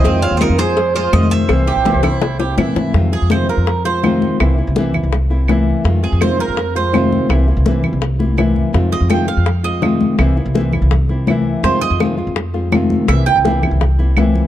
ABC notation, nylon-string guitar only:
X:1
M:4/4
L:1/8
Q:1/4=166
K:Fm
V:1 name="Nylon-string guitar"
[C,E,A,CF] [A,CF] [C,E,A,CF] [A,CF] z [A,CF] [C,E,A,CF]2 | [C,=E,B,C=E] [B,CE] [C,E,B,CE] [B,CE] z [B,CE] [C,E,B,CE]2 | [C,E,A,CF] [A,CF] [C,E,A,CF] [A,CF] z [A,CF] [C,E,A,CF]2 | [C,=E,B,C=E] [B,CE] [C,E,B,CE] [B,CE] z [B,CE] [C,E,B,CE]2 |
[C,E,A,CF] [A,CF] [C,E,A,CF] [A,CF] z [A,CF] [C,E,A,CF]2 | [C,=E,B,C=E] [B,CE] [C,E,B,CE] [B,CE] z [B,CE] [C,E,B,CE]2 | [C,E,A,CF] [A,CF] [C,E,A,CF] [A,CF] z [A,CF] [C,E,A,CF]2 | [C,=E,B,C=E] [B,CE] [C,E,B,CE] [B,CE] z [B,CE] [C,E,B,CE]2 |
[C,E,A,CF] [A,CF] [C,E,A,CF] [A,CF] z [A,CF] [C,E,A,CF]2 | [C,=E,B,C=E] [B,CE] [C,E,B,CE] [B,CE] z [B,CE] [C,E,B,CE]2 |]